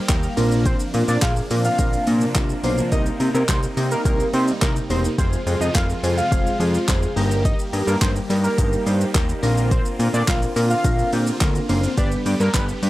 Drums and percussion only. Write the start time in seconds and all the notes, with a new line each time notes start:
0.09 kick, snare, clap, closed hi-hat, shaker
0.23 shaker
0.37 open hi-hat, shaker
0.52 shaker
0.66 kick, closed hi-hat, shaker
0.80 shaker
0.94 open hi-hat, shaker
1.08 shaker
1.22 kick, snare, clap, closed hi-hat, shaker
1.36 shaker
1.51 open hi-hat, shaker
1.65 shaker
1.79 kick, closed hi-hat, shaker
1.93 shaker
2.07 open hi-hat, shaker
2.21 shaker
2.35 kick, snare, clap, closed hi-hat, shaker
2.49 shaker
2.64 open hi-hat, shaker
2.78 shaker
2.92 kick, closed hi-hat, shaker
3.06 shaker
3.20 open hi-hat, shaker
3.35 shaker
3.49 kick, snare, clap, closed hi-hat, shaker
3.63 shaker
3.77 open hi-hat, shaker
3.91 shaker
4.05 kick, closed hi-hat, shaker
4.20 shaker
4.34 open hi-hat, shaker
4.48 shaker
4.62 kick, snare, clap, closed hi-hat, shaker
4.76 shaker
4.90 open hi-hat, shaker
5.05 shaker
5.18 kick, closed hi-hat, shaker
5.33 shaker
5.47 open hi-hat, shaker
5.61 shaker
5.75 kick, snare, clap, closed hi-hat, shaker
5.90 shaker
6.04 open hi-hat, shaker
6.18 shaker
6.32 kick, closed hi-hat, shaker
6.47 shaker
6.60 open hi-hat, shaker
6.75 shaker
6.88 kick, snare, clap, closed hi-hat, shaker
7.03 shaker
7.17 open hi-hat, shaker
7.31 shaker
7.45 kick, closed hi-hat, shaker
7.59 shaker
7.73 open hi-hat, shaker
7.88 shaker
8.02 kick, snare, clap, closed hi-hat, shaker
8.16 shaker
8.30 open hi-hat, shaker
8.44 shaker
8.58 kick, closed hi-hat, shaker
8.73 shaker
8.87 open hi-hat, shaker
9.01 shaker
9.15 kick, snare, clap, closed hi-hat, shaker
9.29 shaker
9.43 open hi-hat, shaker
9.58 shaker
9.71 kick, closed hi-hat, shaker
9.85 shaker
10.00 open hi-hat, shaker
10.14 shaker
10.28 kick, snare, clap, closed hi-hat, shaker
10.42 shaker
10.56 open hi-hat, shaker
10.70 shaker
10.84 kick, closed hi-hat, shaker
10.99 shaker
11.13 open hi-hat, shaker
11.27 shaker
11.41 kick, snare, clap, closed hi-hat, shaker
11.55 shaker
11.69 open hi-hat, shaker
11.84 shaker
11.97 kick, closed hi-hat, shaker
12.12 shaker
12.26 open hi-hat, shaker
12.40 shaker
12.54 kick, snare, clap, closed hi-hat, shaker
12.69 shaker
12.83 open hi-hat, shaker